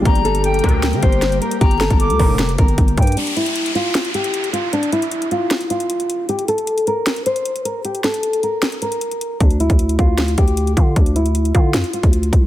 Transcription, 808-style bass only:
X:1
M:4/4
L:1/16
Q:1/4=154
K:Dm
V:1 name="808-style bass" clef=bass
G,,,6 D,,3 D, G,,,4 z2 | G,,,3 G,,,2 D,, F,,,4 G,,,2 G,,,2 G,,2 | z16 | z16 |
z16 | z16 | D,,3 D,,3 D,,4 D,,4 D,2 | D,,6 D,2 F,, z2 D,,3 C,,2 |]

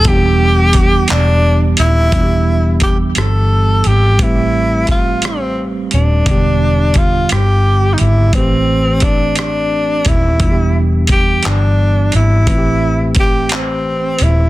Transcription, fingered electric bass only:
X:1
M:6/8
L:1/8
Q:3/8=58
K:Ephr
V:1 name="Fingered electric bass" clef=bass
E,,,3 E,,,2 ^D,,, | z3 G,,,2 ^G,,, | z4 z ^D,,, | E,,,3 G,,,2 ^G,,, |
A,,,4- A,,, ^D,,, | E,,,3 G,,,2 ^G,,, | A,,,4- A,,, ^D,,, |]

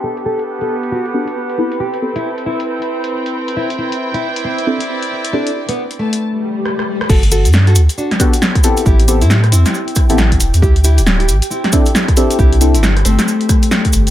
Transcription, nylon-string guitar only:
X:1
M:4/4
L:1/16
Q:"Swing 16ths" 1/4=136
K:G
V:1 name="Nylon-string guitar"
A z A z2 A z2 F z6 z | G z2 E z2 E8- E z | E z E z2 E z2 C z6 z | D z2 B, z2 A,8- A, z |
[FA] z [FA] z2 [FA] z2 [DF] z6 z | [EG] z2 [CE] z2 [CE]8- [CE] z | [EG] z [EG] z2 [EG] z2 [CE] z6 z | [EG] z2 [CE] z2 [A,C]8- [A,C] z |]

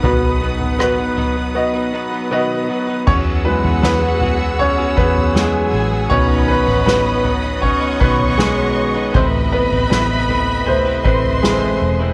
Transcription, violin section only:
X:1
M:4/4
L:1/8
Q:1/4=79
K:E
V:1 name="Violin section"
z8 | [Ff]6 [Gg]2 | [Bb]4 [cc']4 | [Bb]4- [Bb] [=c=c']3 |]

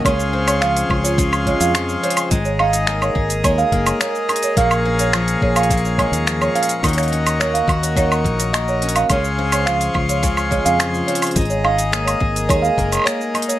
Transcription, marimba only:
X:1
M:4/4
L:1/16
Q:1/4=106
K:Db
V:1 name="Marimba"
d z2 d f z2 d z2 d f z2 d z | z d f z2 d z2 d f z2 d z2 d | f z2 d z2 d f z2 d z2 d f z | z d z2 d f z2 d z3 e d z f |
d z2 d f z2 d z2 d f z2 d z | z d f z2 d z2 d f z2 d z2 d |]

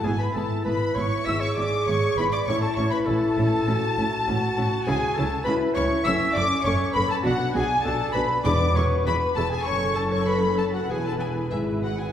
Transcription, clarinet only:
X:1
M:4/4
L:1/16
Q:1/4=99
K:Emix
V:1 name="Clarinet"
G B A2 B2 c2 e c d2 c2 B d | c A c B A8- A2 z2 | G2 A2 B2 c2 e2 d2 c2 B A | F2 G2 A2 B2 d2 c2 B2 A G |
c2 A c B2 A F G A G2 E2 F G |]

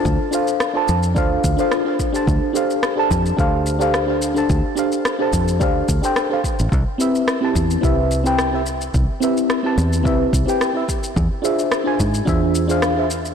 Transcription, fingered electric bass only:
X:1
M:4/4
L:1/16
Q:1/4=108
K:C
V:1 name="Fingered electric bass" clef=bass
D,, z4 z F,,2 D,, z D,, z4 z | D,, z4 z F,, z D,,8 | D,, z4 z F,,2 D,, z D,, z4 A,,, | C,, z4 z E,, z C,,8 |
C,, z4 z E,,2 C,, z C,, z4 z | E,, z4 z ^G,, z E,,8 |]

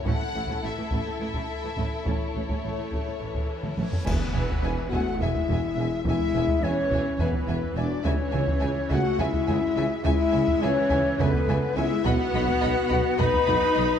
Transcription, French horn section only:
X:1
M:7/8
L:1/8
Q:1/4=105
K:Emix
V:1 name="French horn section"
[A,E] z6 | [A,E] z4 z C | B,3 F E3 | E2 C2 B,2 D |
C3 F E3 | E2 C2 B,2 E | F4 B3 |]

